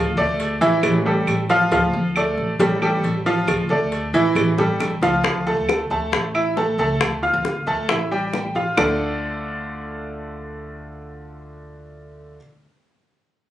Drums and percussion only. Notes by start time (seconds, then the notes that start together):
0.40 cowbell
0.62 cowbell
0.83 cowbell, claves
1.27 cowbell, claves
1.49 cowbell
1.72 cowbell
2.16 cowbell, claves
2.60 cowbell
2.82 claves
3.04 cowbell
3.26 cowbell
3.48 cowbell, claves
3.92 cowbell
4.14 cowbell
4.36 cowbell, claves
4.58 high bongo
4.80 cowbell, high bongo, claves
5.03 cowbell, low bongo
5.24 high bongo
5.47 high bongo
5.69 high bongo, claves
5.91 high bongo
6.13 high bongo
6.35 claves
6.57 high bongo, low bongo
6.79 high bongo
7.01 high bongo, claves
7.23 high bongo
7.45 high bongo
7.67 high bongo
7.89 high bongo, claves
8.33 high bongo, low bongo, claves
8.56 high bongo
8.77 low bongo, claves